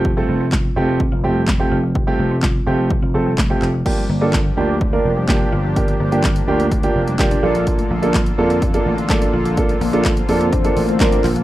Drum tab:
CC |----------------|----------------|x---------------|----------------|
HH |----------------|----------------|----------------|xx-xxx-xxx-xxx-x|
CP |----x-------x---|----x-------x-x-|----x-------x---|----x-------x---|
SD |----o-------o---|----o-------o---|----o-------o---|----o-------o---|
BD |o---o---o---o---|o---o---o---o---|o---o---o---o---|o---o---o---o---|

CC |----------------|----------------|
HH |xx-xxx-xxx-xxx-x|xxoxxxoxxxoxxxox|
CP |----x-------x---|----x-------x-x-|
SD |----o-------o---|----o-------o---|
BD |o---o---o---o---|o---o---o---o---|